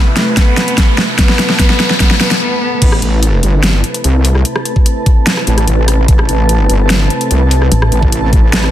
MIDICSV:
0, 0, Header, 1, 8, 480
1, 0, Start_track
1, 0, Key_signature, 0, "minor"
1, 0, Tempo, 408163
1, 1394, Time_signature, 4, 2, 24, 8
1, 10245, End_track
2, 0, Start_track
2, 0, Title_t, "Ambient pad"
2, 0, Program_c, 0, 92
2, 0, Note_on_c, 0, 57, 68
2, 0, Note_on_c, 0, 71, 79
2, 0, Note_on_c, 0, 81, 77
2, 2834, Note_off_c, 0, 57, 0
2, 2834, Note_off_c, 0, 71, 0
2, 2835, Note_off_c, 0, 81, 0
2, 3315, Note_on_c, 0, 60, 72
2, 3884, Note_on_c, 0, 81, 81
2, 3953, Note_on_c, 0, 71, 90
2, 10245, Note_off_c, 0, 60, 0
2, 10245, Note_off_c, 0, 71, 0
2, 10245, Note_off_c, 0, 81, 0
2, 10245, End_track
3, 0, Start_track
3, 0, Title_t, "Supersaw synth"
3, 0, Program_c, 1, 81
3, 0, Note_on_c, 1, 48, 83
3, 0, Note_on_c, 1, 57, 74
3, 0, Note_on_c, 1, 64, 72
3, 0, Note_on_c, 1, 71, 88
3, 2787, Note_off_c, 1, 48, 0
3, 2787, Note_off_c, 1, 57, 0
3, 2787, Note_off_c, 1, 64, 0
3, 2787, Note_off_c, 1, 71, 0
3, 3314, Note_on_c, 1, 48, 81
3, 3314, Note_on_c, 1, 57, 76
3, 3314, Note_on_c, 1, 71, 88
3, 3315, Note_on_c, 1, 64, 78
3, 10245, Note_off_c, 1, 48, 0
3, 10245, Note_off_c, 1, 57, 0
3, 10245, Note_off_c, 1, 64, 0
3, 10245, Note_off_c, 1, 71, 0
3, 10245, End_track
4, 0, Start_track
4, 0, Title_t, "Cello"
4, 0, Program_c, 2, 42
4, 194, Note_on_c, 2, 57, 88
4, 415, Note_off_c, 2, 57, 0
4, 433, Note_on_c, 2, 59, 100
4, 1061, Note_off_c, 2, 59, 0
4, 1153, Note_on_c, 2, 57, 90
4, 1375, Note_off_c, 2, 57, 0
4, 1393, Note_on_c, 2, 59, 99
4, 1855, Note_off_c, 2, 59, 0
4, 1873, Note_on_c, 2, 59, 108
4, 2335, Note_off_c, 2, 59, 0
4, 2353, Note_on_c, 2, 59, 104
4, 2575, Note_off_c, 2, 59, 0
4, 2593, Note_on_c, 2, 59, 104
4, 2815, Note_off_c, 2, 59, 0
4, 2833, Note_on_c, 2, 59, 110
4, 3055, Note_off_c, 2, 59, 0
4, 3074, Note_on_c, 2, 59, 105
4, 3295, Note_off_c, 2, 59, 0
4, 10245, End_track
5, 0, Start_track
5, 0, Title_t, "Wobble bass"
5, 0, Program_c, 3, 39
5, 3314, Note_on_c, 3, 33, 92
5, 3536, Note_off_c, 3, 33, 0
5, 3554, Note_on_c, 3, 33, 93
5, 4015, Note_off_c, 3, 33, 0
5, 4034, Note_on_c, 3, 31, 100
5, 4495, Note_off_c, 3, 31, 0
5, 4754, Note_on_c, 3, 36, 101
5, 5215, Note_off_c, 3, 36, 0
5, 6434, Note_on_c, 3, 33, 94
5, 6656, Note_off_c, 3, 33, 0
5, 6674, Note_on_c, 3, 33, 98
5, 7135, Note_off_c, 3, 33, 0
5, 7154, Note_on_c, 3, 33, 98
5, 7375, Note_off_c, 3, 33, 0
5, 7394, Note_on_c, 3, 33, 96
5, 7855, Note_off_c, 3, 33, 0
5, 7874, Note_on_c, 3, 31, 102
5, 8336, Note_off_c, 3, 31, 0
5, 8594, Note_on_c, 3, 36, 99
5, 9056, Note_off_c, 3, 36, 0
5, 9314, Note_on_c, 3, 33, 93
5, 10015, Note_off_c, 3, 33, 0
5, 10034, Note_on_c, 3, 33, 98
5, 10245, Note_off_c, 3, 33, 0
5, 10245, End_track
6, 0, Start_track
6, 0, Title_t, "Wobble bass"
6, 0, Program_c, 4, 39
6, 9074, Note_on_c, 4, 33, 94
6, 9295, Note_off_c, 4, 33, 0
6, 10245, End_track
7, 0, Start_track
7, 0, Title_t, "Riser"
7, 0, Program_c, 5, 103
7, 0, Note_on_c, 5, 60, 75
7, 2833, Note_off_c, 5, 60, 0
7, 10245, End_track
8, 0, Start_track
8, 0, Title_t, "Drums"
8, 194, Note_on_c, 9, 38, 80
8, 194, Note_on_c, 9, 42, 49
8, 312, Note_off_c, 9, 38, 0
8, 312, Note_off_c, 9, 42, 0
8, 433, Note_on_c, 9, 36, 99
8, 434, Note_on_c, 9, 38, 82
8, 434, Note_on_c, 9, 42, 73
8, 551, Note_off_c, 9, 36, 0
8, 551, Note_off_c, 9, 38, 0
8, 551, Note_off_c, 9, 42, 0
8, 674, Note_on_c, 9, 38, 85
8, 674, Note_on_c, 9, 42, 51
8, 791, Note_off_c, 9, 38, 0
8, 791, Note_off_c, 9, 42, 0
8, 799, Note_on_c, 9, 42, 53
8, 913, Note_on_c, 9, 36, 99
8, 914, Note_off_c, 9, 42, 0
8, 914, Note_on_c, 9, 38, 84
8, 914, Note_on_c, 9, 42, 77
8, 1031, Note_off_c, 9, 36, 0
8, 1032, Note_off_c, 9, 38, 0
8, 1032, Note_off_c, 9, 42, 0
8, 1154, Note_on_c, 9, 38, 91
8, 1272, Note_off_c, 9, 38, 0
8, 1393, Note_on_c, 9, 36, 100
8, 1394, Note_on_c, 9, 38, 93
8, 1394, Note_on_c, 9, 42, 77
8, 1511, Note_off_c, 9, 36, 0
8, 1512, Note_off_c, 9, 38, 0
8, 1512, Note_off_c, 9, 42, 0
8, 1519, Note_on_c, 9, 38, 82
8, 1635, Note_off_c, 9, 38, 0
8, 1635, Note_on_c, 9, 38, 92
8, 1635, Note_on_c, 9, 42, 50
8, 1752, Note_off_c, 9, 38, 0
8, 1752, Note_off_c, 9, 42, 0
8, 1759, Note_on_c, 9, 38, 80
8, 1874, Note_on_c, 9, 36, 101
8, 1875, Note_off_c, 9, 38, 0
8, 1875, Note_on_c, 9, 38, 96
8, 1875, Note_on_c, 9, 42, 77
8, 1991, Note_off_c, 9, 36, 0
8, 1992, Note_off_c, 9, 38, 0
8, 1992, Note_off_c, 9, 42, 0
8, 1998, Note_on_c, 9, 38, 85
8, 2114, Note_off_c, 9, 38, 0
8, 2114, Note_on_c, 9, 38, 97
8, 2114, Note_on_c, 9, 42, 49
8, 2232, Note_off_c, 9, 38, 0
8, 2232, Note_off_c, 9, 42, 0
8, 2238, Note_on_c, 9, 38, 88
8, 2353, Note_on_c, 9, 36, 102
8, 2354, Note_off_c, 9, 38, 0
8, 2354, Note_on_c, 9, 38, 97
8, 2354, Note_on_c, 9, 42, 74
8, 2471, Note_off_c, 9, 36, 0
8, 2472, Note_off_c, 9, 38, 0
8, 2472, Note_off_c, 9, 42, 0
8, 2478, Note_on_c, 9, 38, 95
8, 2594, Note_off_c, 9, 38, 0
8, 2594, Note_on_c, 9, 38, 108
8, 2594, Note_on_c, 9, 42, 53
8, 2711, Note_off_c, 9, 38, 0
8, 2711, Note_off_c, 9, 42, 0
8, 2718, Note_on_c, 9, 38, 94
8, 2718, Note_on_c, 9, 42, 51
8, 2836, Note_off_c, 9, 38, 0
8, 2836, Note_off_c, 9, 42, 0
8, 3314, Note_on_c, 9, 36, 118
8, 3314, Note_on_c, 9, 42, 86
8, 3314, Note_on_c, 9, 49, 105
8, 3431, Note_off_c, 9, 42, 0
8, 3431, Note_off_c, 9, 49, 0
8, 3432, Note_off_c, 9, 36, 0
8, 3439, Note_on_c, 9, 37, 76
8, 3554, Note_on_c, 9, 42, 56
8, 3556, Note_off_c, 9, 37, 0
8, 3671, Note_off_c, 9, 42, 0
8, 3794, Note_on_c, 9, 42, 85
8, 3911, Note_off_c, 9, 42, 0
8, 4033, Note_on_c, 9, 42, 53
8, 4151, Note_off_c, 9, 42, 0
8, 4274, Note_on_c, 9, 38, 114
8, 4274, Note_on_c, 9, 42, 81
8, 4391, Note_off_c, 9, 38, 0
8, 4391, Note_off_c, 9, 42, 0
8, 4514, Note_on_c, 9, 42, 58
8, 4631, Note_off_c, 9, 42, 0
8, 4638, Note_on_c, 9, 42, 56
8, 4754, Note_off_c, 9, 42, 0
8, 4754, Note_on_c, 9, 42, 80
8, 4872, Note_off_c, 9, 42, 0
8, 4994, Note_on_c, 9, 46, 92
8, 5112, Note_off_c, 9, 46, 0
8, 5119, Note_on_c, 9, 37, 49
8, 5234, Note_on_c, 9, 42, 83
8, 5236, Note_off_c, 9, 37, 0
8, 5351, Note_off_c, 9, 42, 0
8, 5358, Note_on_c, 9, 37, 78
8, 5473, Note_on_c, 9, 42, 56
8, 5476, Note_off_c, 9, 37, 0
8, 5591, Note_off_c, 9, 42, 0
8, 5598, Note_on_c, 9, 36, 66
8, 5714, Note_on_c, 9, 42, 82
8, 5716, Note_off_c, 9, 36, 0
8, 5831, Note_off_c, 9, 42, 0
8, 5954, Note_on_c, 9, 36, 112
8, 5954, Note_on_c, 9, 42, 54
8, 6071, Note_off_c, 9, 36, 0
8, 6071, Note_off_c, 9, 42, 0
8, 6194, Note_on_c, 9, 38, 120
8, 6194, Note_on_c, 9, 42, 79
8, 6311, Note_off_c, 9, 38, 0
8, 6311, Note_off_c, 9, 42, 0
8, 6319, Note_on_c, 9, 37, 54
8, 6434, Note_on_c, 9, 42, 53
8, 6436, Note_off_c, 9, 37, 0
8, 6552, Note_off_c, 9, 42, 0
8, 6559, Note_on_c, 9, 37, 51
8, 6559, Note_on_c, 9, 42, 55
8, 6674, Note_off_c, 9, 42, 0
8, 6674, Note_on_c, 9, 42, 81
8, 6676, Note_off_c, 9, 37, 0
8, 6792, Note_off_c, 9, 42, 0
8, 6914, Note_on_c, 9, 37, 52
8, 6914, Note_on_c, 9, 46, 89
8, 7032, Note_off_c, 9, 37, 0
8, 7032, Note_off_c, 9, 46, 0
8, 7154, Note_on_c, 9, 36, 124
8, 7154, Note_on_c, 9, 42, 80
8, 7271, Note_off_c, 9, 36, 0
8, 7272, Note_off_c, 9, 42, 0
8, 7279, Note_on_c, 9, 37, 80
8, 7394, Note_on_c, 9, 42, 55
8, 7396, Note_off_c, 9, 37, 0
8, 7512, Note_off_c, 9, 42, 0
8, 7634, Note_on_c, 9, 42, 81
8, 7752, Note_off_c, 9, 42, 0
8, 7874, Note_on_c, 9, 42, 53
8, 7991, Note_off_c, 9, 42, 0
8, 8114, Note_on_c, 9, 38, 121
8, 8114, Note_on_c, 9, 42, 79
8, 8232, Note_off_c, 9, 38, 0
8, 8232, Note_off_c, 9, 42, 0
8, 8354, Note_on_c, 9, 42, 51
8, 8472, Note_off_c, 9, 42, 0
8, 8478, Note_on_c, 9, 42, 52
8, 8594, Note_off_c, 9, 42, 0
8, 8594, Note_on_c, 9, 42, 78
8, 8711, Note_off_c, 9, 42, 0
8, 8834, Note_on_c, 9, 46, 90
8, 8951, Note_off_c, 9, 46, 0
8, 8959, Note_on_c, 9, 37, 52
8, 9074, Note_on_c, 9, 42, 77
8, 9076, Note_off_c, 9, 37, 0
8, 9191, Note_off_c, 9, 42, 0
8, 9198, Note_on_c, 9, 37, 83
8, 9314, Note_on_c, 9, 42, 53
8, 9316, Note_off_c, 9, 37, 0
8, 9432, Note_off_c, 9, 42, 0
8, 9438, Note_on_c, 9, 36, 67
8, 9554, Note_on_c, 9, 42, 77
8, 9555, Note_off_c, 9, 36, 0
8, 9672, Note_off_c, 9, 42, 0
8, 9793, Note_on_c, 9, 36, 110
8, 9794, Note_on_c, 9, 42, 51
8, 9911, Note_off_c, 9, 36, 0
8, 9912, Note_off_c, 9, 42, 0
8, 10034, Note_on_c, 9, 38, 121
8, 10034, Note_on_c, 9, 42, 75
8, 10152, Note_off_c, 9, 38, 0
8, 10152, Note_off_c, 9, 42, 0
8, 10159, Note_on_c, 9, 37, 56
8, 10245, Note_off_c, 9, 37, 0
8, 10245, End_track
0, 0, End_of_file